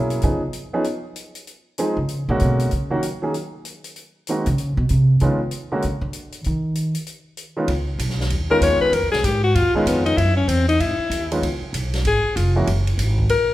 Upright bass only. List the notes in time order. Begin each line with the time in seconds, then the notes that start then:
Already playing: B2
0.23 C#3
1.97 C#3
2.29 A#2
2.41 B2
2.72 C#3
4.47 C#3
4.77 B2
4.90 C3
5.21 C#3
5.84 C#3
6.01 D3
6.46 D#3
7.68 C#2
7.99 B1
8.30 D#2
8.61 D#2
8.80 muted upright bass stroke
8.92 F2
9.02 C#2
9.13 B1
9.24 G#2
9.55 D#2
9.74 muted upright bass stroke
9.86 F2
10.17 F#2
10.48 E2
10.79 G#2
10.98 muted upright bass stroke
11.10 D#2
11.41 C#2
11.61 muted upright bass stroke
11.73 B1
12.05 G#1
12.25 muted upright bass stroke
12.36 F1
12.67 F#1
12.98 G#1
13.30 A#1